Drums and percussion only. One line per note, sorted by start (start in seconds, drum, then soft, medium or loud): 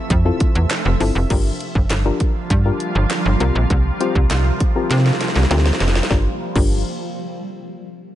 0.10 kick medium
0.10 closed hi-hat medium
0.40 kick loud
0.40 closed hi-hat medium
0.55 closed hi-hat soft
0.70 snare medium
0.70 clap medium
0.70 clap loud
0.70 closed hi-hat medium
1.01 open hi-hat medium
1.30 kick loud
1.30 closed hi-hat medium
1.30 crash medium
1.60 closed hi-hat medium
1.75 kick loud
1.90 snare loud
1.90 clap loud
1.90 closed hi-hat medium
2.20 kick loud
2.20 closed hi-hat medium
2.50 kick medium
2.50 closed hi-hat medium
2.80 closed hi-hat medium
3.10 snare medium
3.10 clap loud
3.10 closed hi-hat medium
3.40 closed hi-hat medium
3.70 kick loud
3.70 closed hi-hat medium
4.01 closed hi-hat medium
4.15 kick loud
4.30 snare medium
4.30 clap loud
4.30 closed hi-hat medium
4.60 kick medium
4.60 closed hi-hat medium
4.91 snare medium
4.91 closed hi-hat medium
4.98 snare medium
5.06 snare medium
5.13 snare medium
5.21 snare medium
5.21 closed hi-hat medium
5.28 snare medium
5.36 snare medium
5.43 snare medium
5.51 snare medium
5.51 closed hi-hat medium
5.58 snare medium
5.66 snare medium
5.73 snare medium
5.80 snare loud
5.80 closed hi-hat medium
5.88 snare medium
5.95 snare loud
6.03 snare medium
6.11 kick loud
6.11 snare medium
6.56 kick loud
6.56 crash medium